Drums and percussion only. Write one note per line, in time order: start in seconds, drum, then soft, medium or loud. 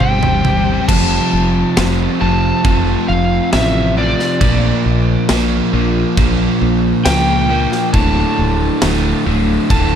0.00 mid tom medium
0.23 floor tom medium
0.23 mid tom medium
0.45 floor tom medium
0.45 mid tom medium
0.89 kick loud
0.89 crash loud
0.89 crash medium
1.77 snare loud
1.77 crash medium
2.65 kick loud
2.65 crash medium
3.53 snare loud
3.53 crash medium
4.20 snare soft
4.41 kick loud
4.41 crash medium
5.29 snare loud
5.29 crash medium
6.17 kick loud
6.17 crash medium
7.06 snare loud
7.06 crash medium
7.72 snare soft
7.94 kick loud
7.94 crash medium
8.82 snare loud
8.82 crash medium
9.70 kick loud
9.70 crash medium